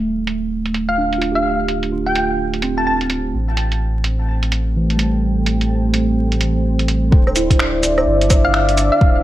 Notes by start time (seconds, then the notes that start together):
Already playing: D1 A3 D4 F4 C5 E5 F5 G5 A5
0.27 closed hi-hat
0.66 closed hi-hat
0.74 closed hi-hat
0.89 F5
0.98 D4
1.13 closed hi-hat
1.18 F4, closed hi-hat
1.32 G4 F5
1.68 closed hi-hat
1.83 closed hi-hat
1.92 F4
2.06 G5
2.15 closed hi-hat
2.54 closed hi-hat
2.62 C4, closed hi-hat
2.78 A5
2.87 A5
3.01 closed hi-hat
3.10 closed hi-hat
3.34 A1 A3
3.53 A4
3.57 closed hi-hat
3.72 closed hi-hat
4.04 closed hi-hat
4.14 G5
4.43 closed hi-hat
4.52 closed hi-hat
4.76 E3
4.90 closed hi-hat
4.96 G3, closed hi-hat
5.46 closed hi-hat
5.61 closed hi-hat
5.94 C4, closed hi-hat
6.32 closed hi-hat
6.41 closed hi-hat
6.79 closed hi-hat
6.88 closed hi-hat
7.12 D1 D4, kick
7.27 low woodblock
7.32 D5 E5, closed hi-hat, cabasa
7.36 E4
7.50 kick, closed hi-hat
7.59 finger snap
7.83 D1, closed hi-hat, cabasa
7.98 low woodblock
8.07 G1
8.21 closed hi-hat
8.30 kick, closed hi-hat, cabasa, low woodblock
8.45 F5
8.54 finger snap
8.69 closed hi-hat
8.77 closed hi-hat, cabasa
8.92 F5
9.01 D1, kick